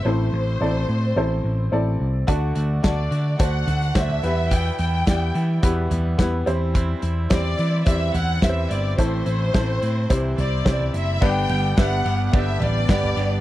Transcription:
<<
  \new Staff \with { instrumentName = "Violin section" } { \time 4/4 \key g \major \tempo 4 = 108 c''2. r4 | r4 d''4 fis''4 e''4 | g''8 g''4. r2 | r4 d''4 e''8 fis''8 e''8 d''8 |
c''2~ c''8 d''4 e''8 | g''4 fis''8.~ fis''32 fis''32 e''8 d''4. | }
  \new Staff \with { instrumentName = "Upright piano" } { \time 4/4 \key g \major <c' e' a' c''>8 r8 <c' e' a' d''>8 r8 <c' e' a' c''>8 r8 <c' e' a' d''>8 r8 | <d' fis' a' d''>8 r8 <d' fis' a' d''>8 r8 <d' fis' a' c''>8 r8 <d' fis' a' c''>8 <b e' g' b'>8~ | <b e' g' b'>8 r8 <b e' g' d''>8 r8 <b e' g' b'>8 r8 <b e' g' b'>8 <c' e' g' c''>8~ | <c' e' g' c''>8 r8 <c' e' g' c''>8 r8 <c' e' g' d''>8 r8 <c' e' g' b' c''>8 r8 |
<c' e' a' c''>8 r8 <c' e' a' c''>8 r8 <c' e' g' c''>8 r8 <c' e' g' c'' d''>8 r8 | <b d' g' b' d''>8 r8 <b d' g' b' e''>8 r8 <b d' g' b' d''>8 r8 <b d' g' b' d''>8 r8 | }
  \new Staff \with { instrumentName = "Upright piano" } { \clef bass \time 4/4 \key g \major a,4. r2 r8 | d4. r2 e8~ | e4 r2 r8 e8~ | e4 r2. |
a,4. r8 c4. r8 | g,4. r2 r8 | }
  \new Staff \with { instrumentName = "Clean electric guitar" } { \time 4/4 \key g \major r1 | <d a d' fis'>8 <a d' fis'>8 <d a d' fis'>8 <a d' fis'>8 <d a d' fis'>8 <a d' fis'>8 <d a d' fis'>8 <e g b e'>8 | <e, b, e g b e'>8 <e g b e'>8 <e g b e'>8 <e g b e'>8 <e, b, e g b e'>8 <e g b e'>8 <e g b e'>8 <g c' e'>8 | <e g c' e'>8 <g c' e'>8 <e g c' e'>8 <g c' e'>8 <e g c' e'>8 <g c' e'>8 <e g c' e'>8 <g c' e'>8 |
<a, e a c' e'>8 <a c' e'>8 <e a c' e'>8 <a c' e'>8 <c e g c' e'>8 <g c' e'>8 <e g c' e'>8 <g c' e'>8 | <g, d g b d' g'>8 <g b d' g'>8 <g b d' g'>8 <g b d' g'>8 <g, d g b d' g'>8 <g b d' g'>8 <g b d' g'>8 <g b d' g'>8 | }
  \new Staff \with { instrumentName = "Analog synth pad" } { \time 4/4 \key g \major r1 | r1 | r1 | r1 |
r1 | <d g b g'>1 | }
  \new Staff \with { instrumentName = "Picked electric bass" } { \clef bass \time 4/4 \key g \major a,,8 a,,8 a,,8 a,8 a,,8 a,,8 a,,8 c,8 | d,8 d,8 d,8 d8 d,8 d,8 d,8 e,8~ | e,8 e,8 e,8 e8 e,8 e,8 e,8 e,8~ | e,8 e,8 e,8 e8 e,8 e,8 e,8 g,,8 |
a,,8 a,,8 a,,8 a,8 c,8 c,8 c,8 fis,,8 | g,,8 g,,8 g,,8 g,,8 g,,8 a,,8 g,,8 g,,8 | }
  \new DrumStaff \with { instrumentName = "Drums" } \drummode { \time 4/4 r4 r4 r4 r4 | <hh bd>8 hh8 <hh bd sn>8 hh8 <hh bd>8 <hh tomfh>16 hh16 <hh bd sn>16 tomfh16 hh8 | <hh bd>8 hh8 <hh bd sn>8 hh8 <hh bd>8 <hh tomfh>8 <hh bd sn>8 hh8 | <hh bd>8 hh8 <hh bd sn>8 hh8 <hh bd>8 <hh tomfh>8 <hh bd sn>8 hh8 |
<hh bd>8 hh8 <hh bd sn>8 hh8 <hh bd>8 <hh tomfh>8 <hh bd sn>16 tomfh16 hh8 | <cymc bd>8 cymr8 <bd cymr sn>8 cymr8 <bd cymr>8 <cymr tomfh>8 <bd cymr sn>16 tomfh16 cymr8 | }
>>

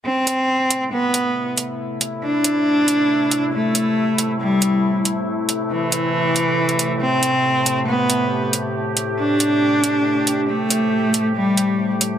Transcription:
<<
  \new Staff \with { instrumentName = "Cello" } { \time 4/4 \key a \minor \tempo 4 = 138 c'2 b4. r8 | r4 d'2. | a2 g4. r8 | r4 e2. |
c'2 b4. r8 | r4 d'2. | a2 g4. r8 | }
  \new Staff \with { instrumentName = "Ambient pad" } { \time 4/4 \key a \minor << { e'1~ | e'1~ | e'1~ | e'1 |
g'1~ | g'1~ | g'1 | } \\ { <a, c a>1~ | <a, c a>1~ | <a, c a>1~ | <a, c a>1~ |
<a, c a>1~ | <a, c a>1~ | <a, c a>1 | } >> }
  \new DrumStaff \with { instrumentName = "Drums" } \drummode { \time 4/4 r8 hh8 r8 hh8 r8 hh8 r8 hh8 | r8 hh8 r8 hh8 r8 hh8 r8 hh8 | r8 hh8 r8 hh8 r8 hh8 r8 hh8 | r8 hh8 r8 hh8 r8 hh8 r16 hh16 hh8 |
r8 hh8 r8 hh8 r8 hh8 r8 hh8 | r8 hh8 r8 hh8 r8 hh8 r8 hh8 | r8 hh8 r8 hh8 r8 hh8 r8 hh8 | }
>>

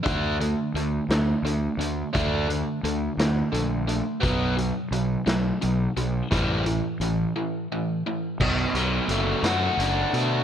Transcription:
<<
  \new Staff \with { instrumentName = "Overdriven electric guitar" } { \clef bass \time 6/8 \key d \major \tempo 4. = 58 <d a d'>8 <d a>8 <d a>8 <d a>8 <d a>8 <d a>8 | <d a d'>8 <d a>8 <d a>8 <d a>8 <d a>8 <d a>8 | <b, fis b>8 <b, fis>8 <b, fis>8 <b, fis>8 <b, fis>8 <b, fis>8 | <a, e g>8 <a, e>8 <a, e>8 <a, e>8 <a, e>8 <a, e>8 |
b,8 fis8 a8 fis'8 d'8 a8 | }
  \new Staff \with { instrumentName = "Fingered electric bass" } { \clef bass \time 6/8 \key d \major d,4 d,8 d,8 d,8 d,8 | d,4 d,8 d,8 bes,,4 | b,,4 b,,8 b,,8 b,,8 b,,8 | a,,4 a,,8 r4. |
b,,8 b,,8 fis,,8 fis,8 fis,,8 b,8 | }
  \new DrumStaff \with { instrumentName = "Drums" } \drummode { \time 6/8 <hh bd>8 hh8 hh8 <hh sn>8 hh8 hh8 | <hh bd>8 hh8 hh8 <hh sn>8 hh8 hh8 | <hh bd>8 hh8 hh8 <hh sn>8 hh8 hh8 | <hh bd>8 hh8 hh8 r4. |
<cymc bd>8 hh8 hh8 <hh sn>8 hh8 hh8 | }
>>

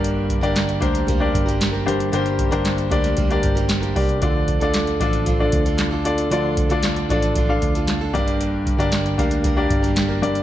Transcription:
<<
  \new Staff \with { instrumentName = "Upright piano" } { \time 4/4 \key g \minor \tempo 4 = 115 <d' g' bes' d''>8 r16 <d' g' bes' d''>8. <d' g' bes' c''>8. <d' g' bes' d''>4 r16 <d' g' bes' c''>8 | <d' g' bes' c''>8. <d' g' bes' c''>8. <d' g' bes' d''>8. <d' g' bes' d''>4 r16 <d' g' bes' d''>8 | <d' f' a' d''>8. <d' f' a' d''>8. <d' f' a' d''>8. <d' f' a' d''>4 r16 <d' f' a' d''>8 | <d' f' a' d''>8. <d' f' a' d''>8. <d' f' a' d''>8. <d' f' a' f''>4 r16 <d' g' bes' d''>8~ |
<d' g' bes' d''>8 r16 <d' g' bes' d''>8. <d' g' bes' f''>8. <d' g' bes' d''>4 r16 <d' g' bes' d''>8 | }
  \new Staff \with { instrumentName = "Upright piano" } { \clef bass \time 4/4 \key g \minor g,4 r2 r8 g,8~ | g,4 r2. | d4. r2 r8 | d4. r2 g,8~ |
g,4 r2 r8 g,8 | }
  \new Staff \with { instrumentName = "Steel-string acoustic guitar" } { \time 4/4 \key g \minor <g, d g bes g' bes'>8. <g bes g' bes'>8. <g bes g' bes'>8 <g bes g' bes'>8. <g bes g' bes'>8 <g bes g' bes'>8. | <g bes g' bes'>8. <g bes g' bes'>8. <g bes g' bes'>8 <g bes g' bes'>8. <g bes g' bes'>8 <g bes g' bes'>8. | <f d' f' a'>8. <d' f' a'>8. <f d' f' a'>8 <f d' f' a'>8. <d' f' a'>8 <d' f' a'>8. | <f d' f' a'>8. <d' f' a'>8. <f d' f' a'>8 <f d' f' a'>8. <d' f' a'>8 <d' f' a'>16 <g, d g bes d' bes'>8~ |
<g, d g bes d' bes'>8. <g bes d' bes'>8. <g bes d' bes'>8 <g bes d' bes'>8. <g bes d' bes'>8 <g bes d' bes'>8. | }
  \new Staff \with { instrumentName = "Picked electric bass" } { \clef bass \time 4/4 \key g \minor g,,8. g,,8. d,4 g,,4. | g,,8. g,,8. d,4 g,,4 c,8 | d,8. d,8. a,,4 d,4. | d,8. d,8. a,,4 d,4 g,,8~ |
g,,8. g,,8. d,4 g,,4. | }
  \new DrumStaff \with { instrumentName = "Drums" } \drummode { \time 4/4 hh8 <hh bd>16 hh16 <hc hh sn>16 hh16 <hh bd>16 hh16 <hh bd>8 <hh bd>16 hh16 <hc hh sn>8 hh16 hh16 | hh16 hh16 <hh bd>16 hh16 <hc hh sn>16 hh16 <hh bd>16 <hh sn>16 <hh bd>16 hh16 <hh bd>16 hh16 <hc hh sn>16 hh16 <hho bd>16 hh16 | <hh bd>8 <hh bd>16 hh16 <hc hh sn>16 hh16 <hh bd>16 hh16 <hh bd>8 <hh bd>16 hh16 <hc hh sn>8 hh16 hh16 | hh8 <hh bd>16 hh16 <hc hh sn>16 hh16 <hh bd>16 hh16 <hh bd>8 <hh bd>16 hh16 <hc hh sn>8 <hh bd>16 hh16 |
hh8 <hh bd>16 hh16 <hc hh sn>16 hh16 <hh bd>16 hh16 <hh bd>8 <hh bd>16 hh16 <hc hh sn>8 hh16 hh16 | }
>>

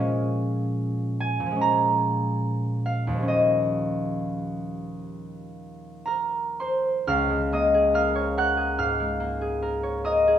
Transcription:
<<
  \new Staff \with { instrumentName = "Harp" } { \time 4/4 \key des \major \tempo 4 = 71 << { f''4. aes''8 bes''4. f''8 | ees''2. <bes' bes''>8 <c'' c'''>8 | <f'' f'''>8 <ees'' ees'''>8 <f'' f'''>8 <ges'' ges'''>8 <f'' f'''>4. <ees'' ees'''>8 | } \\ { r1 | r1 | des,16 aes16 bes16 aes'16 bes'16 des''16 bes'16 aes'16 aes,16 aes16 bes16 aes'16 bes'16 des''16 bes'16 aes'16 | } >> }
  \new Staff \with { instrumentName = "Harp" } { \clef bass \time 4/4 \key des \major <bes, f aes des'>2 <bes, f aes des'>2 | <ees, f g des'>1~ | <ees, f g des'>1 | }
>>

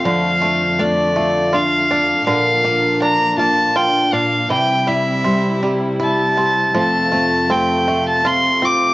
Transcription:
<<
  \new Staff \with { instrumentName = "Fiddle" } { \time 3/4 \key f \major \tempo 4 = 81 f''4 d''4 f''4 | f''4 bes''8 a''8 g''8 f''8 | g''8 e''4 r8 a''4 | a''4 g''8. a''16 c'''8 d'''8 | }
  \new Staff \with { instrumentName = "Steel-string acoustic guitar" } { \time 3/4 \key f \major << { r8 d'4 f'8 d'8 f'8 | <bes d' f' bes'>8 d'4 f'4. | r8 e'4 g'8 e'8 g'8 | <a c' f' a'>8 c'4 f'8 c'8 f'8 | } \\ { f4 a2 | bes,2 r8 bes,8 | c4 g2 | f4 a2 | } >> }
  \new Staff \with { instrumentName = "Five-string banjo" } { \time 3/4 \key f \major d8 a8 d'8 a8 f'8 d'8 | d8 bes8 d'8 bes8 f'8 d'8 | e8 g8 c'8 g8 e'8 c'8 | f8 a8 c'8 a8 f'8 c'8 | }
  \new Staff \with { instrumentName = "String section" } { \clef bass \time 3/4 \key f \major <f, d a>2. | <bes, f d'>2. | <c g e'>2. | <f, c a>2. | }
>>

